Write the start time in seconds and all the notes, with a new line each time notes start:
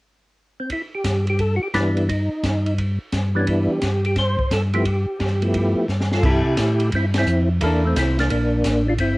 0.60 C4
0.70 E4, kick, ride
0.95 G4
1.04 G2, kick, snare, hi-hat pedal, ride
1.27 G4, ride
1.39 A4, kick, ride
1.56 F#4
1.63 G4
1.74 G2 E3 G3 B3 D4 E4, kick, snare, hi-hat pedal, ride
1.97 E4, ride
2.09 D#4, kick, ride
2.43 G2, kick, snare, hi-hat pedal, ride
2.66 ride
2.78 kick, ride
3.12 G2, kick, snare, hi-hat pedal, ride
3.35 E3 G3 B3 D4
3.39 C#4
3.47 E4, kick, ride
3.72 G4
3.82 G2, kick, snare, hi-hat pedal, ride
4.05 G4, ride
4.16 C5, kick, snare, ride
4.39 kick
4.51 G2 A4, kick, snare, hi-hat pedal, ride
4.74 F3 A3 B3 E4 G4, ride
4.85 kick, ride
5.19 G2, kick, snare, hi-hat pedal, ride
5.42 F3 A3 B3 E4, ride
5.54 kick, ride
5.88 G2, snare, hi-hat pedal
6.00 snare
6.12 F4 A4, snare
6.23 C3 E4 G4 A4, kick, crash
6.57 A2, kick, snare, hi-hat pedal, ride
6.80 ride
6.92 G2 C4, kick, ride
6.96 E4
7.14 snare, ride
7.18 C4 E4
7.26 F2, hi-hat pedal
7.61 E2 A#3 E4 A4, kick, ride
7.66 D4
7.85 A3 C4
7.96 C2 C4 E4, kick, snare, hi-hat pedal, ride
8.19 A#3 D4, snare, ride
8.30 A#1 A#3 D4, kick, ride
8.64 A1, kick, snare, hi-hat pedal, ride
8.88 D4 F4
8.98 G1 C4 E4, kick, ride